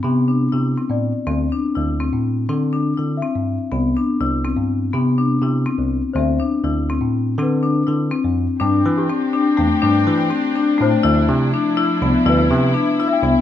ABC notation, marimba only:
X:1
M:5/8
L:1/8
Q:1/4=122
K:Ddor
V:1 name="Marimba"
B, D E C2 | C D E C2 | C D E C2 | B, D E C2 |
B, D E C2 | C D E C2 | C D E C2 | D2 C D A, |
D2 C D A, | E2 D E B, | E2 D E B, |]